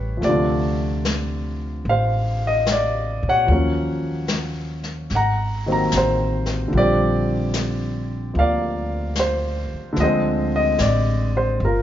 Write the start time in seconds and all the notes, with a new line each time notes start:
Already playing: A1 G3 B3 C#4 E4 G4 B4 C#5
0.17 F3 A3
0.22 D2 C3 D5, brush sweep, snare
0.26 D3 F4
1.05 snare, hi-hat pedal
1.85 A1, brush sweep
1.89 C5 F5
2.47 D#5
2.66 snare, hi-hat pedal
2.72 D5
3.23 A#2
3.29 C#5 F#5
3.47 D#2 F3 F#3 A#3, brush sweep
3.52 C#4
4.28 snare, hi-hat pedal
4.83 snare
5.10 G#1, brush sweep, snare
5.15 F#5 A#5
5.66 D#3 F#3 A#3 C4
5.72 A#5
5.92 A1, snare, hi-hat pedal
5.97 C5
6.46 snare
6.68 D3
6.72 A#1 F3 G3, brush sweep
6.78 C4 G4 D5
7.54 snare, hi-hat pedal
8.34 D2 F3 A#3, brush sweep
8.39 D5 F5
9.15 C5, snare, hi-hat pedal
9.73 muted upright bass stroke
9.93 D3 F3, brush sweep, snare
9.97 D2 G#3 D#5
10.03 C4 C5
10.56 D#5
10.78 A1 D5, snare, hi-hat pedal
11.37 C5
11.59 G1, brush sweep
11.65 F4 A#4